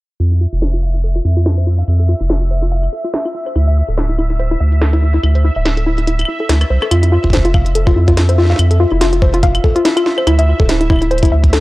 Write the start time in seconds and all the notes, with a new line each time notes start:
0.20 F2 F4 E5, closed hi-hat, claves
0.32 E4, closed hi-hat
0.41 F4
0.53 F1 F4
0.62 C5, snare, closed hi-hat
0.74 F4, closed hi-hat
0.83 F5, claves
0.95 closed hi-hat
1.04 A4, closed hi-hat
1.16 F4, closed hi-hat
1.25 F2 E4
1.37 F4, closed hi-hat
1.46 F4, snare, closed hi-hat
1.58 C5, closed hi-hat
1.67 F4
1.79 F5
1.88 F2, closed hi-hat, claves
2.00 A4, closed hi-hat
2.09 F4
2.20 F1 E4
2.30 F4, snare, closed hi-hat
2.41 F4, closed hi-hat
2.51 C5
2.62 F4, closed hi-hat
2.72 F5, closed hi-hat
2.83 closed hi-hat, claves
2.93 A4
3.04 F4, closed hi-hat
3.14 E4, snare, closed hi-hat
3.25 F4, closed hi-hat, claves
3.35 F4
3.46 C5, claves
3.56 D2 E4, closed hi-hat, claves
3.67 E5, closed hi-hat
3.88 D1 A4
3.98 E4, snare, closed hi-hat
4.09 E4, closed hi-hat
4.18 E4, claves
4.30 E4, closed hi-hat
4.39 C5, closed hi-hat
4.51 E4
4.60 D2 E5
4.72 closed hi-hat
4.81 A4, snare, closed hi-hat
4.93 E4, closed hi-hat
5.02 E4
5.14 E4
5.23 D2 E4, closed hi-hat, claves
5.35 C5, closed hi-hat
5.44 E4
5.56 D1 E5
5.65 snare, closed hi-hat
5.77 A4, closed hi-hat
5.86 E4
5.98 E4, closed hi-hat
6.07 E4, closed hi-hat
6.19 E4, closed hi-hat, claves
6.21 claves
6.25 E4, claves
6.40 A4
6.49 D2 E4, cross-stick, snare, closed hi-hat
6.61 cross-stick, closed hi-hat, claves
6.70 C2 C5
6.82 A4, cross-stick, claves
6.91 F2 F4 E5, closed hi-hat, claves
7.03 E4, closed hi-hat
7.12 F4
7.24 F1 F4, kick
7.30 C5, kick, snare, closed hi-hat
7.37 kick
7.45 F4, closed hi-hat
7.54 F5, kick, claves
7.66 closed hi-hat
7.75 A4, closed hi-hat
7.87 F4, kick
7.96 F2 E4
8.08 F4, kick, closed hi-hat
8.17 F4, snare, closed hi-hat
8.29 C5, closed hi-hat
8.38 F4, snare
8.42 snare
8.45 snare
8.50 F5, snare
8.52 snare
8.56 F2, snare, closed hi-hat, claves
8.71 A4, closed hi-hat
8.80 F4
8.92 F1 E4
9.01 F4, snare, closed hi-hat
9.13 F4, closed hi-hat
9.22 C5, kick
9.34 F4, closed hi-hat
9.43 F5, kick, closed hi-hat
9.55 closed hi-hat, claves
9.64 A4, kick
9.76 F4, closed hi-hat
9.85 E4, snare, closed hi-hat
9.97 F4, closed hi-hat, claves
10.06 F4, snare
10.18 C5, claves
10.27 D2 E4, closed hi-hat, claves
10.39 E5, closed hi-hat
10.60 D1 A4, kick
10.69 E4, snare, closed hi-hat
10.81 E4, closed hi-hat
10.90 E4, kick, claves
10.93 claves
10.96 claves
10.99 E4, closed hi-hat, claves
11.11 C5, closed hi-hat
11.18 closed hi-hat
11.23 E4, kick, closed hi-hat
11.25 closed hi-hat
11.32 D2 E5
11.44 kick, closed hi-hat
11.53 A4, snare, closed hi-hat